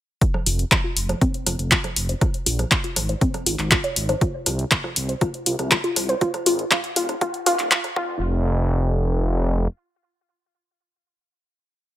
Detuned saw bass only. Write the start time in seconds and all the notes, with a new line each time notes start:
0.47 F1
0.97 F1
1.47 F1
1.59 F1
1.96 F1
2.46 A#1
2.96 G#1
3.46 G#1
3.59 G#1
3.96 G#1
4.47 C2
4.96 C2
5.46 C2
5.59 C2
5.96 C2
6.46 G#1
6.96 D#1
7.46 D#1
7.59 D#1
7.96 F1